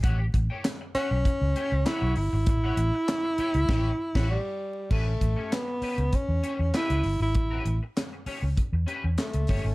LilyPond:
<<
  \new Staff \with { instrumentName = "Clean electric guitar" } { \time 4/4 \key a \major \tempo 4 = 98 <g' cis'' fis''>16 r8 <g' cis'' g''>16 r8 <g' cis'' fis''>16 r8. <g' cis'' g''>16 r16 <g' cis'' fis''>8 r8 | r16 <g' cis'' fis''>16 r4 <g' cis'' g''>16 r16 <g' cis'' g''>8 r16 <g' cis'' fis''>8 r8. | <cis' g' b'>16 r8 <cis' g' cis''>16 r8 <cis' g' b'>16 r8. <cis' g' cis''>16 r16 <cis' g' b'>8 r8 | r16 <cis' g' b'>16 r4 <cis' g' cis''>16 r8. <cis' g' b'>16 r8. <cis' g' cis''>16 r16 | }
  \new Staff \with { instrumentName = "Tenor saxophone" } { \time 4/4 \key a \major r4. cis'4. e'8 e'8~ | e'2. g4 | a4 b4 cis'4 e'8. e'16~ | e'8. r2 r16 a4 | }
  \new Staff \with { instrumentName = "Fingered electric bass" } { \clef bass \time 4/4 \key a \major a,,8 a,,16 r4 b,,16 r16 cis,16 r16 cis,16 r16 b,,16 g,,16 gis,,16 | a,,8 a,,16 r4 cis,16 a,,8 r16 a,,8 r8. | a,,8 a,,16 r4 cis,16 r16 e,16 r16 e,16 r16 cis,16 g,,16 gis,,16 | a,,8 a,,16 r4 cis,16 r16 e,16 r16 e,16 r16 cis,16 g,,16 gis,,16 | }
  \new DrumStaff \with { instrumentName = "Drums" } \drummode { \time 4/4 <hh bd>8 <hh bd>8 <hc hh sn>8 hh8 <hh bd>8 hh8 <hc hh sn>8 hho8 | <hh bd>8 hh8 <hc hh sn>8 hh16 hh16 <cymc bd sn>8. <cymc bd sn>16 r4 | <cymc bd>8 <hh bd>8 <hc hh sn>8 hho16 hh16 <hh bd>8 hh8 <hc hh sn>16 hh16 hho8 | <hh bd>8 hh8 <hc hh sn>8 hho8 <hh bd>8 hh8 <hc hh sn>16 hh16 <hho bd>8 | }
>>